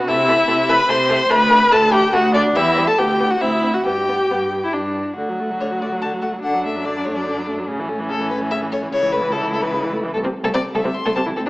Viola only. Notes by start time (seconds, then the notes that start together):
0.08 E4
0.70 B4
0.89 C5
1.30 B4
1.72 A4
1.93 G4
2.13 F#4
2.35 D4
2.56 E4
2.87 A4
2.98 G4
3.30 F#4
3.41 E4
3.74 F#4
3.85 G4
5.18 D3
5.29 F#3
5.40 A3
5.51 F#3
5.62 D3
5.71 F#3
5.82 A3
5.92 F#3
6.03 D3
6.13 F#3
6.23 A3
6.33 F#3
6.44 D3
6.54 F#3
6.65 A3
6.76 F#3
6.85 D3
6.96 F#3
7.07 A3
7.17 F#3
7.27 D3
7.38 F#3
7.47 A3
7.59 F#3
7.69 C#3
7.79 E3
7.89 A3
7.99 E3
8.10 C#3
8.20 E3
8.31 A3
8.41 E3
8.52 C#3
8.62 E3
8.72 A3
8.83 E3
8.92 C#3
9.03 E3
9.12 A3
9.22 E3
9.33 C#3
9.42 E3
9.53 A3
9.63 E3
9.73 C#3
9.83 E3
9.93 A3
10.04 E3
10.14 A3
10.25 C3
10.45 A3
10.55 C3
10.75 A3
10.86 C3
11.06 A3
11.17 C3
11.27 E3
11.37 C4